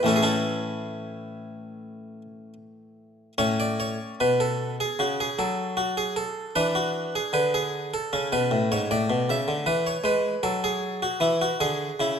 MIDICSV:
0, 0, Header, 1, 2, 480
1, 0, Start_track
1, 0, Key_signature, 3, "major"
1, 0, Tempo, 821918
1, 53, Time_signature, 4, 2, 24, 8
1, 2453, Tempo, 780234
1, 7371, End_track
2, 0, Start_track
2, 0, Title_t, "Harpsichord"
2, 0, Program_c, 0, 6
2, 18, Note_on_c, 0, 45, 44
2, 25, Note_on_c, 0, 52, 39
2, 33, Note_on_c, 0, 57, 41
2, 37, Note_on_c, 0, 61, 38
2, 45, Note_on_c, 0, 69, 70
2, 92, Note_off_c, 0, 69, 0
2, 93, Note_on_c, 0, 68, 53
2, 129, Note_off_c, 0, 61, 0
2, 132, Note_on_c, 0, 69, 70
2, 136, Note_on_c, 0, 61, 47
2, 138, Note_off_c, 0, 68, 0
2, 138, Note_on_c, 0, 64, 48
2, 1295, Note_off_c, 0, 69, 0
2, 1478, Note_off_c, 0, 61, 0
2, 1479, Note_off_c, 0, 64, 0
2, 1941, Note_off_c, 0, 45, 0
2, 1944, Note_off_c, 0, 52, 0
2, 1948, Note_off_c, 0, 57, 0
2, 1976, Note_on_c, 0, 45, 66
2, 1976, Note_on_c, 0, 61, 37
2, 1976, Note_on_c, 0, 73, 92
2, 2097, Note_off_c, 0, 73, 0
2, 2101, Note_on_c, 0, 74, 67
2, 2218, Note_off_c, 0, 74, 0
2, 2218, Note_on_c, 0, 73, 68
2, 2317, Note_off_c, 0, 45, 0
2, 2418, Note_off_c, 0, 73, 0
2, 2455, Note_on_c, 0, 47, 52
2, 2456, Note_on_c, 0, 71, 76
2, 2577, Note_on_c, 0, 69, 77
2, 2578, Note_off_c, 0, 71, 0
2, 2784, Note_off_c, 0, 69, 0
2, 2805, Note_off_c, 0, 47, 0
2, 2824, Note_on_c, 0, 68, 67
2, 2940, Note_on_c, 0, 49, 58
2, 2942, Note_off_c, 0, 68, 0
2, 2944, Note_on_c, 0, 66, 68
2, 3061, Note_off_c, 0, 66, 0
2, 3071, Note_on_c, 0, 68, 76
2, 3112, Note_off_c, 0, 49, 0
2, 3182, Note_on_c, 0, 54, 56
2, 3184, Note_off_c, 0, 68, 0
2, 3184, Note_on_c, 0, 69, 72
2, 3419, Note_on_c, 0, 66, 76
2, 3420, Note_off_c, 0, 69, 0
2, 3537, Note_off_c, 0, 66, 0
2, 3544, Note_on_c, 0, 68, 63
2, 3660, Note_off_c, 0, 68, 0
2, 3661, Note_on_c, 0, 69, 73
2, 3697, Note_off_c, 0, 54, 0
2, 3867, Note_off_c, 0, 61, 0
2, 3898, Note_off_c, 0, 69, 0
2, 3902, Note_on_c, 0, 71, 91
2, 3903, Note_on_c, 0, 62, 38
2, 3904, Note_on_c, 0, 52, 62
2, 4018, Note_off_c, 0, 71, 0
2, 4022, Note_on_c, 0, 66, 70
2, 4248, Note_off_c, 0, 52, 0
2, 4260, Note_off_c, 0, 66, 0
2, 4270, Note_on_c, 0, 68, 57
2, 4379, Note_on_c, 0, 50, 54
2, 4382, Note_on_c, 0, 71, 84
2, 4385, Note_off_c, 0, 68, 0
2, 4502, Note_off_c, 0, 71, 0
2, 4509, Note_on_c, 0, 68, 79
2, 4729, Note_off_c, 0, 50, 0
2, 4749, Note_off_c, 0, 68, 0
2, 4752, Note_on_c, 0, 69, 66
2, 4844, Note_off_c, 0, 62, 0
2, 4870, Note_on_c, 0, 61, 36
2, 4871, Note_on_c, 0, 49, 58
2, 4954, Note_off_c, 0, 69, 0
2, 4982, Note_off_c, 0, 49, 0
2, 4990, Note_on_c, 0, 47, 61
2, 4991, Note_on_c, 0, 71, 77
2, 5102, Note_off_c, 0, 47, 0
2, 5106, Note_on_c, 0, 45, 60
2, 5220, Note_off_c, 0, 45, 0
2, 5228, Note_off_c, 0, 71, 0
2, 5232, Note_on_c, 0, 73, 78
2, 5233, Note_on_c, 0, 44, 59
2, 5343, Note_off_c, 0, 44, 0
2, 5349, Note_off_c, 0, 73, 0
2, 5351, Note_on_c, 0, 45, 61
2, 5351, Note_on_c, 0, 74, 80
2, 5462, Note_off_c, 0, 45, 0
2, 5465, Note_on_c, 0, 47, 62
2, 5579, Note_off_c, 0, 47, 0
2, 5587, Note_on_c, 0, 49, 55
2, 5588, Note_off_c, 0, 74, 0
2, 5591, Note_on_c, 0, 76, 84
2, 5700, Note_off_c, 0, 49, 0
2, 5701, Note_on_c, 0, 50, 53
2, 5792, Note_off_c, 0, 76, 0
2, 5802, Note_off_c, 0, 61, 0
2, 5814, Note_on_c, 0, 52, 64
2, 5815, Note_on_c, 0, 71, 85
2, 5816, Note_off_c, 0, 50, 0
2, 5938, Note_on_c, 0, 73, 63
2, 5939, Note_off_c, 0, 71, 0
2, 5989, Note_off_c, 0, 52, 0
2, 6044, Note_on_c, 0, 56, 58
2, 6051, Note_on_c, 0, 71, 74
2, 6060, Note_off_c, 0, 73, 0
2, 6222, Note_off_c, 0, 56, 0
2, 6287, Note_on_c, 0, 54, 59
2, 6287, Note_on_c, 0, 69, 80
2, 6295, Note_off_c, 0, 71, 0
2, 6413, Note_off_c, 0, 69, 0
2, 6414, Note_on_c, 0, 68, 86
2, 6637, Note_off_c, 0, 54, 0
2, 6651, Note_on_c, 0, 66, 68
2, 6657, Note_off_c, 0, 68, 0
2, 6761, Note_on_c, 0, 52, 59
2, 6765, Note_on_c, 0, 64, 82
2, 6775, Note_off_c, 0, 66, 0
2, 6891, Note_off_c, 0, 64, 0
2, 6891, Note_on_c, 0, 66, 81
2, 6939, Note_off_c, 0, 52, 0
2, 7008, Note_on_c, 0, 50, 61
2, 7009, Note_on_c, 0, 68, 79
2, 7013, Note_off_c, 0, 66, 0
2, 7181, Note_off_c, 0, 50, 0
2, 7249, Note_off_c, 0, 68, 0
2, 7249, Note_on_c, 0, 49, 66
2, 7253, Note_on_c, 0, 64, 82
2, 7371, Note_off_c, 0, 49, 0
2, 7371, Note_off_c, 0, 64, 0
2, 7371, End_track
0, 0, End_of_file